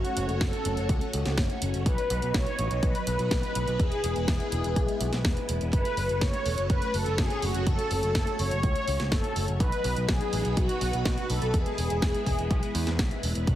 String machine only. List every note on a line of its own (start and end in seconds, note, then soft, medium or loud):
0.00 1.82 A3 medium
0.00 1.82 C#4 medium
0.00 1.82 F#4 medium
0.00 1.82 C#5 medium
1.86 3.78 F#3 medium
1.86 5.69 B3 medium
1.86 3.78 D#4 medium
1.86 5.69 B4 medium
3.80 5.71 E4 medium
5.73 9.56 A3 medium
5.73 9.56 C#4 medium
5.73 9.56 F#4 medium
5.73 9.56 C#5 medium
9.60 11.52 F#3 medium
9.60 13.43 B3 medium
9.60 11.52 D#4 medium
9.60 13.43 B4 medium
11.54 13.45 G#3 medium
11.54 13.45 E4 medium
13.47 13.55 A3 medium
13.47 13.55 C#4 medium
13.47 13.55 F#4 medium
13.47 13.55 C#5 medium